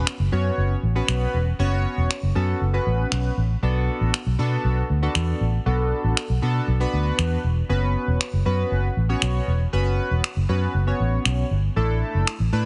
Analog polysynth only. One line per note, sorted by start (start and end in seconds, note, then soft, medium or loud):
0.32 0.74 B3 medium
0.32 0.74 C#4 medium
0.32 0.74 F#4 medium
0.32 0.74 C#5 loud
0.95 1.37 B3 medium
0.95 1.37 C#4 medium
0.95 1.37 F#4 medium
0.95 1.37 B4 medium
1.59 2.09 B3 medium
1.59 2.09 C#4 medium
1.59 2.09 F#4 medium
1.59 2.09 C#5 loud
2.35 2.60 B3 medium
2.35 2.60 C#4 medium
2.35 2.61 F#4 medium
2.35 2.61 A4 loud
2.73 3.32 B3 medium
2.73 3.32 C#4 medium
2.73 3.32 F#4 medium
2.73 3.32 B4 loud
3.63 4.13 B3 medium
3.63 4.13 D4 medium
3.63 4.13 F#4 medium
3.63 4.13 A4 medium
4.39 4.80 B3 medium
4.39 4.80 D4 medium
4.39 4.81 F#4 medium
4.39 4.81 A4 loud
5.02 5.44 B3 medium
5.02 5.44 D4 medium
5.02 5.44 F#4 medium
5.02 5.44 A4 loud
5.66 6.16 B3 medium
5.66 6.16 D4 medium
5.66 6.16 F#4 medium
5.66 6.16 A4 loud
6.42 6.67 B3 medium
6.42 6.67 D4 medium
6.42 6.67 F#4 medium
6.42 6.67 A4 loud
6.80 7.38 B3 medium
6.80 7.39 D4 medium
6.80 7.39 F#4 medium
6.80 7.39 B4 medium
7.69 8.19 B3 medium
7.69 8.19 C#4 medium
7.69 8.19 F#4 medium
7.69 8.20 B4 loud
8.45 8.87 B3 medium
8.45 8.87 C#4 medium
8.45 8.87 F#4 medium
8.45 8.87 B4 loud
9.09 9.51 B3 medium
9.09 9.51 C#4 medium
9.09 9.51 F#4 medium
9.09 9.51 C#5 loud
9.73 10.23 B3 medium
9.73 10.23 C#4 medium
9.73 10.23 F#4 medium
9.73 10.23 B4 medium
10.49 10.74 B3 medium
10.49 10.74 C#4 medium
10.49 10.74 F#4 medium
10.49 10.74 B4 loud
10.87 11.45 B3 medium
10.87 11.45 C#4 medium
10.87 11.46 F#4 medium
10.87 11.46 C#5 medium
11.76 12.26 A3 medium
11.76 12.26 D4 medium
11.76 12.26 E4 medium
11.76 12.26 A4 loud
12.52 12.65 A3 medium
12.52 12.65 D4 medium
12.52 12.65 E4 medium
12.52 12.65 B4 loud